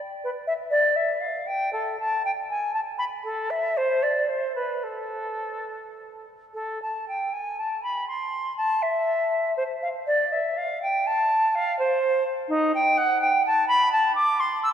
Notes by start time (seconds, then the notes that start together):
0.24 B4
0.47 E5
0.70 D5
0.96 E5
1.21 F5
1.47 G5
1.73 A4
2.00 A5
2.25 G5
2.50 G#5
2.74 A5
2.98 B5
3.24 A4
3.50 E5
3.77 C5
4.03 D5
4.29 C5
4.55 B4
4.83 A4
6.54 A4
6.82 A5
7.08 G5
7.33 G#5
7.59 A5
7.83 B5
8.08 C6
8.57 A5
8.82 E5
9.57 C5
9.82 F5
10.07 D5
10.32 E5
10.57 F5
10.82 G5
11.06 A5
11.55 F5
11.79 C5
12.49 D#4
12.74 G5
12.97 F#5
13.21 G5
13.46 A5
13.68 B5
13.92 A5
14.15 D6
14.40 C6
14.63 E6